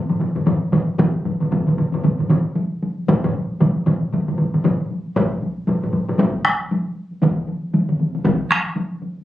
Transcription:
0.09 taiko low-mid, taiko mid, taiko high
0.20 taiko low-mid, taiko mid, taiko high
0.35 taiko low-mid, taiko mid
0.46 taiko low-mid, taiko mid, taiko high
0.63 taiko high
0.72 taiko low-mid, taiko mid, taiko high
0.89 taiko high
0.98 taiko, taiko low-mid, taiko mid, taiko high
1.16 taiko high
1.25 taiko low-mid, taiko mid, taiko high
1.40 taiko low-mid, taiko mid, taiko high
1.51 taiko, taiko low-mid, taiko mid, taiko high
1.67 taiko low-mid, taiko mid
1.77 taiko low-mid, taiko mid, taiko high
1.92 taiko low-mid, taiko mid, taiko high
2.03 taiko low-mid, taiko mid, taiko high
2.18 taiko low-mid, taiko mid, taiko high
2.30 taiko low-mid, taiko mid
2.46 taiko high
2.56 taiko high
2.72 taiko high
2.83 taiko high
2.98 taiko high
3.08 taiko, taiko low-mid, taiko mid, taiko high
3.24 taiko low-mid, taiko mid
3.35 taiko high
3.51 taiko high
3.60 taiko, taiko low-mid, taiko mid, taiko high
3.86 taiko low-mid, taiko mid, taiko high
4.03 taiko high
4.13 taiko low-mid, taiko mid, taiko high
4.28 taiko low-mid, taiko mid, taiko high
4.38 taiko low-mid, taiko mid, taiko high
4.54 taiko low-mid, taiko mid, taiko high
4.64 taiko low-mid, taiko mid, taiko high
4.81 taiko high
4.91 taiko high
5.07 taiko high
5.16 taiko, taiko low-mid, taiko high
5.33 taiko high
5.42 taiko high
5.57 taiko high
5.67 taiko low-mid, taiko high
5.83 taiko low-mid, taiko high
5.93 taiko low-mid, taiko high
6.08 taiko low-mid, taiko high
6.18 taiko, taiko low-mid, taiko high
6.34 taiko high
6.44 taiko rim, taiko high
6.61 taiko high
6.71 taiko high
7.12 taiko high
7.22 taiko, taiko mid, taiko high
7.37 taiko high
7.47 taiko high
7.64 taiko high
7.74 taiko mid, taiko high
7.89 taiko mid, taiko high
8.00 taiko mid, taiko high
8.15 taiko mid, taiko high
8.25 taiko, taiko mid, taiko high
8.50 taiko rim, taiko high
8.65 taiko high
8.76 taiko high
9.02 taiko high
9.17 taiko high

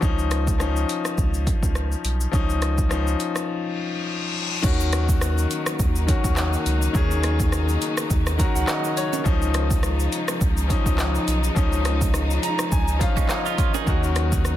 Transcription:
0.01 C#2 F3 C#4 D#4, kick, shaker
0.19 shaker
0.31 cross-stick, closed hi-hat, shaker
0.47 kick, shaker
0.58 F3 C#4 D#4, cross-stick, shaker
0.77 shaker
0.89 closed hi-hat, shaker
1.05 cross-stick, shaker
1.18 C#2, kick, shaker
1.34 shaker
1.47 kick, closed hi-hat, shaker
1.63 C#2, kick, shaker
1.75 cross-stick, shaker
1.92 shaker
2.05 B1, closed hi-hat, shaker
2.21 shaker
2.31 C#2 F3 C#4 D#4, kick, shaker
2.50 shaker
2.62 cross-stick, closed hi-hat, shaker
2.78 kick, shaker
2.89 F3 C#4 D#4, cross-stick, shaker
3.07 shaker
3.20 closed hi-hat, shaker
3.36 cross-stick, shaker
3.49 reverse cymbal
4.62 D#2 C#3 D#3 F#3 A#3 C#4 D#4 F#4, kick, crash, shaker
4.80 shaker
4.93 cross-stick, closed hi-hat, shaker
5.09 kick, shaker
5.21 cross-stick, shaker
5.38 shaker
5.51 closed hi-hat, shaker
5.66 cross-stick, shaker
5.79 D#2, kick, shaker
5.96 shaker
6.07 D#3 C#4 F#4, kick, closed hi-hat, shaker
6.24 D#2, kick, shaker
6.37 cross-stick, clap, shaker
6.53 shaker
6.66 C#2, closed hi-hat, shaker
6.82 shaker
6.93 D#2 D#3 C#4 G#4, kick, shaker
7.11 shaker
7.24 cross-stick, closed hi-hat, shaker
7.40 kick, shaker
7.52 cross-stick, shaker
7.68 shaker
7.82 closed hi-hat, shaker
7.97 cross-stick, shaker
8.10 D#2, kick, shaker
8.27 cross-stick, shaker
8.38 D#3 C#4 F#4 A#5, kick, closed hi-hat, shaker
8.55 C#2 F#5, shaker
8.68 D#5, cross-stick, clap, shaker
8.84 shaker
8.97 C#5, closed hi-hat, shaker
9.13 high timbale, shaker
9.24 C#2 F3 G#3 C#4 D#4, kick, shaker
9.42 shaker
9.54 cross-stick, closed hi-hat, shaker
9.71 kick, shaker
9.83 cross-stick, shaker
10.00 shaker
10.12 closed hi-hat, shaker
10.28 cross-stick, shaker
10.41 C#2, kick, shaker
10.57 shaker
10.68 F3 C#4 D#4, kick, closed hi-hat, shaker
10.86 C#2, kick, shaker
10.99 cross-stick, clap, shaker
11.15 shaker
11.28 B1, closed hi-hat, shaker
11.44 shaker
11.55 C#2 F3 C#4 D#4, kick, shaker
11.73 shaker
11.85 cross-stick, closed hi-hat, shaker
12.01 kick, shaker
12.14 cross-stick, shaker
12.30 shaker
12.43 A#5, closed hi-hat, shaker
12.59 cross-stick, shaker
12.72 C#2 G#5, kick, shaker
12.88 shaker
12.99 F3 C#4 F4 F5, kick, closed hi-hat, shaker
13.17 B1 G#3 C#4, kick, shaker
13.29 A#3 D#4 D#5, cross-stick, clap, shaker
13.46 B3 F4, shaker
13.58 C#5, kick, closed hi-hat, shaker
13.74 D#4 G#4, high timbale, shaker
13.85 D#2 D#3 F#3 A#3 C#4 F#4, kick, shaker
14.03 shaker
14.16 cross-stick, closed hi-hat, shaker
14.32 kick, shaker
14.45 cross-stick, shaker

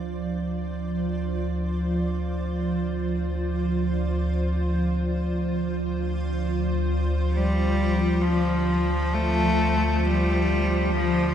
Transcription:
Already playing: D2 F3 F4 C5 D5
7.32 F3 G3
8.22 F3
9.14 A3
10.05 G3
10.51 D#5
10.96 F3

